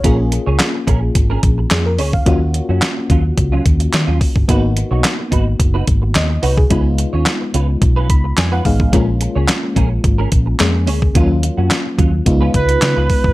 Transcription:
<<
  \new Staff \with { instrumentName = "Analog synth lead" } { \time 4/4 \key ais \phrygian \tempo 4 = 108 r1 | r1 | r1 | r1 |
r1 | r2 r8 b'4. | }
  \new Staff \with { instrumentName = "Clean electric guitar" } { \time 4/4 \key ais \phrygian <cis' gis' ais'>16 r8 <cis' gis' cis''>16 r8 <cis' gis' ais'>16 r8 <cis' gis' ais'>16 r4 <cis' gis' cis''>16 r16 | <fis cis' eis'>16 r8 <fis cis' fis'>16 r8 <fis cis' eis'>16 r8 <fis cis' eis'>16 r8. <fis cis' eis'>16 r8 | <dis' fis' b'>16 r8 <dis' fis' cis''>16 r8 <dis' fis' b'>16 r8 <dis' fis' b'>16 r4 <dis' fis' cis''>16 r16 | <cis' eis' b'>16 r8 <cis' eis' cis''>16 r8 <cis' eis' b'>16 r8 <cis' eis' b'>16 r8. <cis' eis' b'>16 r8 |
<cis' gis' ais'>16 r8 <cis' gis' cis''>16 r8 <cis' gis' ais'>16 r8 <cis' gis' ais'>16 r4 <cis' gis' cis''>16 r16 | <fis cis' eis'>16 r8 <fis cis' fis'>16 r8 <fis cis' eis'>16 r8 <cis' eis' b'>16 r8. <cis' eis' b'>16 r8 | }
  \new Staff \with { instrumentName = "FM electric piano" } { \time 4/4 \key ais \phrygian << { cis''16 r2 r8. gis'16 ais'16 cis''16 eis''16~ | eis''16 r2. r8. | r2. dis''8 b'16 gis'16~ | gis'16 r2 r16 b''8 gis''16 fis''16 eis''8 |
r1 | r1 | } \\ { <ais cis' eis' gis'>1 | <ais cis' eis' fis'>1 | <ais b dis' fis'>1 | <gis b dis' eis'>2.~ <gis b dis' eis'>8 <gis b dis' gis'>8 |
<gis ais cis' eis'>2. <gis ais cis' gis'>4 | <fis ais cis' eis'>2 <gis b dis' eis'>2 | } >> }
  \new Staff \with { instrumentName = "Fingered electric bass" } { \clef bass \time 4/4 \key ais \phrygian ais,,8. cis,16 r8 ais,,8 gis,,8 ais,,8 eis,8 d,8 | dis,8. fis,16 r8 dis,8 cis,8 dis,8 dis16 dis,16 r16 g,,16 | gis,,8. b,,16 r8 gis,,8 fis,,8 gis,,8 dis,8 bis,,8 | cis,8. dis,16 r8 cis,8 b,,8 cis,8 eis,8 a,,8 |
ais,,8. cis,16 r8 ais,,8 gis,,8 ais,,8 eis,8 d,8 | dis,8. fis,16 r8 dis,8 cis,8 cis,8 cis16 cis,16 r16 g,,16 | }
  \new DrumStaff \with { instrumentName = "Drums" } \drummode { \time 4/4 <hh bd>8 hh8 <hc hh sn>8 <hh bd>8 <hh bd>8 <hh bd>8 <hc hh sn>8 hho16 bd16 | <hh bd>8 hh8 <hc hh sn>8 <hh bd>8 <hh bd>8 <hh bd>16 hh16 <hc hh sn>8 <hho bd>16 bd16 | <hh bd>8 hh8 <hc hh sn>8 <hh bd>8 <hh bd>8 <hh bd>8 <hc hh sn>8 hho16 bd16 | <hh bd>8 hh8 <hc hh sn>8 hh8 <hh bd>8 <hh bd>8 <hc hh sn>8 <hho bd>16 bd16 |
<hh bd>8 hh8 <hc hh sn>8 <hh bd>8 <hh bd>8 <hh bd>8 <hc hh sn>8 hho16 bd16 | <hh bd>8 hh8 <hc hh sn>8 <hh bd>8 <hh bd>8 <hh bd>16 hh16 <hc hh sn>8 <hho bd>16 bd16 | }
>>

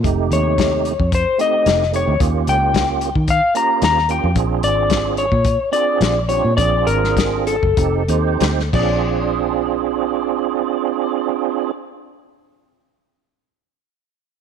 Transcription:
<<
  \new Staff \with { instrumentName = "Electric slide guitar" } { \time 4/4 \key bes \mixolydian \tempo 4 = 104 r8 des''4. c''8 ees''4 des''8 | r8 g''4. f''8 bes''8 bes''8 g''8 | r8 d''4 des''4 d''4 des''8 | d''8 bes'4 a'2 d''8~ |
d''1~ | d''1 | }
  \new Staff \with { instrumentName = "Tonewheel organ" } { \time 4/4 \key bes \mixolydian <c a ees' g'>4. r4 <a c' ees' g'>4 <a c' ees' g'>8 | <bes des' f' g'>4. r4 <bes des' f' g'>4 <bes des' f' g'>8 | <c' d' f' aes'>4. r4 <c' d' f' aes'>4 <c' d' f' g'>8 | <c' d' f' aes'>4. r8 <c' ees' g' a'>8 <c' ees' g' c''>4 <c' d' f' aes'>8~ |
<c' d' f' aes'>1~ | <c' d' f' aes'>1 | }
  \new Staff \with { instrumentName = "Fingered electric bass" } { \clef bass \time 4/4 \key bes \mixolydian f,,8 ees,4~ ees,16 f,8 r8. f,,8. d,16 | ees,8 des,4~ des,16 ees8 r8. ees,8. f,16 | bes,,8 aes,,4~ aes,,16 bes,8 r8. bes,,8. bes,16 | bes,,8 aes,,4~ aes,,16 ges,,16 f,,8 ees,8 d,8 bes,,8~ |
bes,,1~ | bes,,1 | }
  \new DrumStaff \with { instrumentName = "Drums" } \drummode { \time 4/4 <hh bd>8 hh8 <hh bd sn>8 hh16 bd16 <hh bd>8 hh8 <hh sn>16 sn16 hh8 | <hh bd>8 hh8 <hh bd sn>8 hh16 bd16 <hh bd>8 hh8 <hh sn>16 sn16 hh8 | <hh bd>8 hh8 <hh bd sn>8 hh16 bd16 <hh bd>8 hh8 <hh sn>8 hh8 | <hh bd>8 hh16 sn16 <hh bd sn>8 hh16 bd16 <hh bd>8 hh8 <hh sn>16 sn16 <cymc bd>8 |
r4 r4 r4 r4 | r4 r4 r4 r4 | }
>>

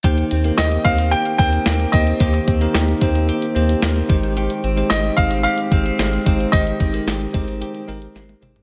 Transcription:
<<
  \new Staff \with { instrumentName = "Grand piano" } { \time 4/4 \key ees \major \tempo 4 = 111 r4 ees''8 f''8 g''8 g''4 ees''8~ | ees''8 r2. r8 | r4 ees''8 f''8 f''2 | ees''2. r4 | }
  \new Staff \with { instrumentName = "Tine electric piano" } { \time 4/4 \key ees \major <bes ees' g' c''>8. <bes ees' g' bes'>8. <bes ees' g' c''>8. r16 <bes ees' g' bes'>8. r16 <bes ees' g' c''>8 | <bes ees' g' c''>8. <bes ees' g' bes'>8. <bes ees' g' c''>8. r16 <bes ees' g' c''>8. r16 <aes ees' g' c''>8~ | <aes ees' g' c''>8 r16 <aes ees' g' c''>8. <aes g' c''>8. r16 <aes ees' g' c''>8. r16 <aes ees' g' c''>8 | <aes ees' g' c''>8. <aes ees' g' bes'>8. <aes ees' g' c''>8. r16 <aes ees' g' bes'>8. r16 <aes ees' g' c''>8 | }
  \new Staff \with { instrumentName = "Clean electric guitar" } { \time 4/4 \key ees \major <ees g'>8 c'8 g'8 c'8 g'8 c'8 bes8 c'8 | <ees g'>8 c'8 g'8 c'8 g'8 c'8 bes8 ees8 | <ees g'>8 c'8 g'8 c'8 g'8 c'8 aes8 c'8 | <ees g'>8 c'8 g'8 c'8 g'8 c'8 aes8 c'8 | }
  \new Staff \with { instrumentName = "Analog synth bass" } { \clef bass \time 4/4 \key ees \major ees,8 ees,8 ees,8 ees,8. r16 ees,8 ees,8 ees,8 | ees,8 ees,8 ees,8 ees,8. r16 ees,8 ees,8 aes,,8~ | aes,,8 aes,,8 aes,,8 aes,,8. r16 aes,,8 aes,,8 aes,,8 | aes,,8 aes,,8 aes,,8 aes,,8. r16 aes,,8 aes,,8 aes,,8 | }
  \new DrumStaff \with { instrumentName = "Drums" } \drummode { \time 4/4 <hh bd>16 hh16 hh16 hh16 <hh sn>16 hh16 <hh bd>16 hh16 hh16 hh16 <hh bd>16 hh16 <hh sn>16 hh16 <hh bd>16 hh16 | <hh bd>16 hh16 <hh bd>16 hh16 <hh sn>16 hh16 <hh bd>16 hh16 hh16 hh16 hh16 hh16 <hh sn>16 hh16 <hh bd>16 hh16 | hh16 hh16 hh16 hh16 <hh sn>16 hh16 <hh bd>16 hh16 hh16 hh16 <hh bd>16 hh16 <hh sn>16 hh16 <hh bd>16 hh16 | <hh bd>16 hh16 <hh bd>16 hh16 <hh sn>16 hh16 <hh bd>16 hh16 hh16 hh16 hh16 hh16 <hh sn>16 <hh tommh>16 <hh toml>16 <hh tomfh>16 | }
>>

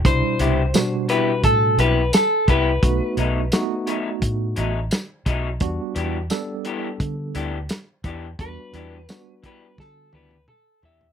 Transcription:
<<
  \new Staff \with { instrumentName = "Clean electric guitar" } { \time 4/4 \key e \minor \tempo 4 = 86 c''4. b'8 a'8 b'8 a'8 b'8~ | b'4. r2 r8 | r1 | b'4. b'8 a'8 b'8 a'8 e''8 | }
  \new Staff \with { instrumentName = "Tine electric piano" } { \time 4/4 \key e \minor <b, g d' e'>4 <b, g d' fis'>4. r4. | <a b dis' fis'>4 <a b dis' fis'>4. r4. | <g b d' fis'>4 <g b d' a'>4. r4. | <g b d' fis'>4 <g b d' fis'>4. r4. | }
  \new Staff \with { instrumentName = "Clean electric guitar" } { \time 4/4 \key e \minor r8 <c b e' g'>8 r8 <c b e' g'>8 r8 <c b e' g'>8 r8 <c b e' g'>8 | r8 <b, fis a dis'>8 r8 <b, fis a dis'>8 r8 <b, fis a dis'>8 r8 <b, fis a dis'>8 | r8 <e b d' g'>8 r8 <e b d' g'>8 r8 <e b d' g'>8 r8 <e b d' g'>8 | r8 <e b d' g'>8 r8 <e b d' g'>8 r8 <e b d' g'>8 r8 <e b d' g'>8 | }
  \new Staff \with { instrumentName = "Fingered electric bass" } { \clef bass \time 4/4 \key e \minor c,16 r16 c,8 r4 a,8 b,,8 r8 c,8 | b,,16 r16 b,,8 r4 a,8 a,,8 r8 b,,8 | e,16 r16 e,8 r4 d8 d,8 r8 e,8 | e,16 r16 e,8 r4 d8 d,8 r8 e,8 | }
  \new DrumStaff \with { instrumentName = "Drums" } \drummode { \time 4/4 <hh bd>8 hh8 <hh sn tamb>8 hh8 <hh bd>8 hh8 <hh sn tamb>8 <hh bd>8 | <hh bd>8 hh8 <hh sn tamb>8 hh8 <hh bd>8 hh8 <hh sn tamb>8 <hh bd>8 | <hh bd>8 hh8 <hh sn tamb>8 hh8 <hh bd>8 hh8 <hh sn tamb>8 <hh bd>8 | <hh bd>8 hh8 <hh sn tamb>8 <hh bd>8 <bd sn>8 tommh16 tommh16 toml8 tomfh16 tomfh16 | }
>>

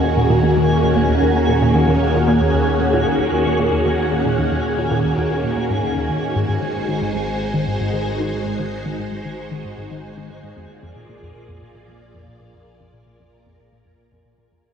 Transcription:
<<
  \new Staff \with { instrumentName = "Synth texture" } { \time 4/4 \key ees \dorian \tempo 4 = 114 aes'1~ | aes'1~ | aes'1~ | aes'1~ |
aes'1~ | aes'1~ | aes'1 | }
  \new Staff \with { instrumentName = "String machine" } { \time 4/4 \key ees \dorian << { <ees bes ges'>1~ | <ees bes ges'>1~ | <ees bes ges'>1 | <aes ees' c''>1~ |
<aes ees' c''>1 | <bes f' d''>1~ | <bes f' d''>1 | } \\ { des'1~ | des'1~ | des'1 | ges'1~ |
ges'1 | aes'1 | bes'1 | } >> }
  \new Staff \with { instrumentName = "Synth arpeggio sound" } { \clef bass \time 4/4 \key ees \dorian r16 bes,16 bes,16 ees,16 ees,16 r16 bes,16 bes,16 ees,16 ees,16 r16 bes,16 bes,16 ees,16 ees,16 r16 | bes,16 bes,16 ees,16 ees,16 r16 bes,16 bes,16 ees,16 ees,16 r16 bes,16 bes,16 ees,16 ees,16 r16 bes,16 | bes,16 ees,16 ees,16 r16 bes,16 bes,16 ees,16 ees,16 r16 bes,16 bes,16 aes,16 ees,16 ees,16 ees16 bes,16 | aes,16 aes,16 ees16 r16 ees16 aes,16 aes,16 ees16 r16 ees16 aes,16 aes,16 ees16 r16 ees16 aes,16 |
aes,16 ees16 r16 ees16 aes,16 aes,16 ees16 r16 ees16 aes,16 aes,16 ees16 r16 ees16 aes,16 aes,16 | f,16 r16 f,16 bes,16 bes,16 f,16 r16 f,16 bes,16 bes,16 f,16 r16 f,16 bes,16 bes,16 f,16 | r16 f,16 bes,16 bes,16 f,16 r16 f,16 bes,16 bes,16 f,16 r16 f,16 bes,16 bes,16 f,16 r16 | }
  \new Staff \with { instrumentName = "Synth drone" } { \clef bass \time 4/4 \key ees \dorian ees,1~ | ees,1~ | ees,1 | aes,,1~ |
aes,,1 | bes,,1~ | bes,,1 | }
>>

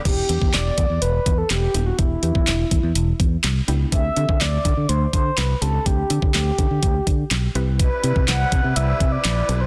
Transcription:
<<
  \new Staff \with { instrumentName = "Soft synth lead" } { \time 4/4 \key e \minor \tempo 4 = 124 g'4 d''4 b'8. a'16 g'8. fis'16 | e'2. r4 | e''4 d''4 c''8 c''8 b'8 a'8 | g'4 g'2~ g'8 r8 |
b'4 fis''4 e''8. d''4 c''16 | }
  \new Staff \with { instrumentName = "Synth pluck" } { \time 4/4 \key e \minor <b d' e' g'>16 r16 <b d' e' g'>4 r2 <b d' e' g'>16 r16 | <b d' e' g'>16 r16 <b d' e' g'>4 r2 <b d' e' g'>16 r16 | <c' d' g' a'>16 r16 <c' d' g' a'>4 r2 <c' d' g' a'>16 r16 | <c' d' g' a'>16 r16 <c' d' g' a'>4 r2 <c' e' g' b'>8~ |
<c' e' g' b'>8 <c' e' g' b'>4 r2 <c' e' g' a'>16 r16 | }
  \new Staff \with { instrumentName = "Accordion" } { \time 4/4 \key e \minor r1 | r1 | r1 | r1 |
<c g e' b'>1 | }
  \new Staff \with { instrumentName = "Fingered electric bass" } { \clef bass \time 4/4 \key e \minor e,,8 e,16 e,16 e,,8 e,16 e,16 e,,8 e,8 e,,8 dis,,8 | e,,8 e,16 e,16 e,,8 e,16 e,16 e,,8 e,8 c,8 cis,8 | d,8 d16 d16 d,8 d16 d16 d,8 d8 c,8 cis,8 | d,8 d16 d16 d,8 d16 d16 d,8 d8 b,,8 c,8~ |
c,8 c16 c16 c,8 c16 c16 c,8 c8 ais,,8 b,,8 | }
  \new DrumStaff \with { instrumentName = "Drums" } \drummode { \time 4/4 <cymc hh bd>8 hh16 bd16 <hc hh sn>8 <hh bd>8 hh8 <hh bd>8 <hc hh sn>8 hh8 | <hh bd>8 hh16 bd16 <hc hh sn>8 <hh bd>8 hh8 <hh bd>8 <hc hh sn>8 hh8 | <hh bd>8 hh16 bd16 <hc hh sn>8 <hh bd>8 hh8 <hh bd>8 <hc hh sn>8 hh8 | <hh bd>8 hh16 bd16 <hc hh sn>8 <hh bd>8 <hh bd>8 <hh bd>8 <hc hh sn>8 hh8 |
<hh bd>8 hh16 bd16 <hc hh sn>8 <hh bd>8 hh8 <hh bd>8 <hc hh sn>8 hh8 | }
>>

